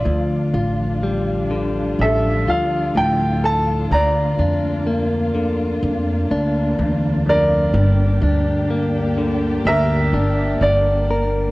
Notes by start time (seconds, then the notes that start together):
Already playing: D3 D4 F4 D5
0.05 D2 F3 D4 F4
0.54 A1 F4
1.03 G3
1.51 D3
1.99 A1 A4 E5
2.47 D2 F4 F5
2.95 D2 A2 G5
3.44 A4 A5
3.91 D2 A#3 D4 D5 A#5
4.39 F2 D4
4.87 A#3
5.34 D3
5.83 F2 A#3
6.31 D2 D4
6.79 D2 E2
7.26 F2 A#4 D5
7.74 G1 G2 A#3 G4
8.22 D2 D4
8.70 A#3
9.18 D3
9.65 D2 A#4 E5
10.13 G1 D4
10.61 G1 D3 D5
11.11 A#4